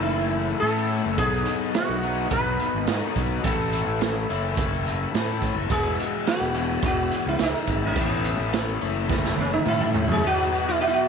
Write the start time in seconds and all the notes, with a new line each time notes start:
Already playing: F#1 A2 E3 A3 C#4 E4 E5 A5 C#6 E6
0.03 E4
0.60 A2 E3 A3 A4
0.64 C#4 E4
1.06 F#1
1.18 B1 B2 F#3 B3 D#4 G#4 D#5 F#5 B5 D#6, kick, closed hi-hat
1.22 F#4
1.46 closed hi-hat
1.74 F#4, snare, closed hi-hat
1.89 B1
2.03 B2 F#3 B3 D#4 F#4, closed hi-hat
2.31 B1 B4, kick, closed hi-hat
2.59 closed hi-hat
2.74 G#1
2.87 G#2 B2 F#3 B3 D#4 F#4, snare, closed hi-hat
3.12 A4
3.16 B1, kick, closed hi-hat
3.44 A1 A2 E3 A3 C#4 E4 A4 E5 A5 C#6 E6, kick, closed hi-hat
3.73 closed hi-hat
3.87 A1
4.01 snare, closed hi-hat
4.29 F#1 A2 E3 A3 C#4 E4, closed hi-hat
4.57 kick, closed hi-hat
4.87 closed hi-hat
5.14 A2 E3 A3 C#4 E4, snare, closed hi-hat
5.42 kick, closed hi-hat
5.56 F#1
5.70 E1 E2 B2 E3 G#3 B3 E4 G#4 F#5 G#5 B5 E6, kick, closed hi-hat
5.99 closed hi-hat
6.27 F#4, snare, closed hi-hat
6.41 E1
6.54 E2 B2 E3 G#3 B3 E4, closed hi-hat
6.82 E1 F#4, kick, closed hi-hat
7.11 closed hi-hat
7.26 C#2 E4
7.39 C#2 E2 B2 E3 G#3 B3 E4, snare, closed hi-hat
7.43 D#4
7.67 G#1, kick, closed hi-hat
7.87 C#4
7.96 A1 A2 E3 A3 C#4 E4 E5 A5 C#6, kick, closed hi-hat
8.01 B3
8.24 closed hi-hat
8.39 A1
8.53 snare, closed hi-hat
8.81 F#1 A2 E3 A3 C#4 E4, closed hi-hat
9.09 A3, kick, snare
9.24 snare
9.37 C#4, high tom
9.52 D#4, high tom
9.65 A2 E3 A3 C#4 E4, mid tom
9.81 mid tom
9.94 floor tom
10.08 F#2 G#4, floor tom
10.23 B2 F#3 B3 D#4 F#4 D#5 F#5 B5 D#6
10.69 E4
10.81 F#4
10.87 E4
10.94 F#4